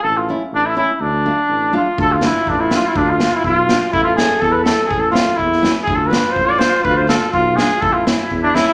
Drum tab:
SD |--------|--------|--o---o-|--o---o-|
BD |--------|--------|o---o---|o---o---|

SD |--o---o-|--o--oo-|--o---o-|--o---o-|
BD |o---o---|o---o---|o---o---|o---o---|

SD |--o---o-|
BD |o---o---|